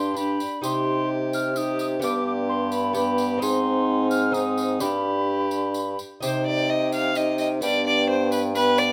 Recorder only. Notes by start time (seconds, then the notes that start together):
Already playing: C6
0.17 B5
0.64 C6
1.34 F6
1.57 D#6
1.81 D#6
2.04 D6
2.27 D6
2.49 C6
2.73 B5
2.95 B5
3.43 C6
4.10 F6
4.34 D#6
4.81 B5
6.22 G5
7.16 G5
7.62 G5
8.55 G5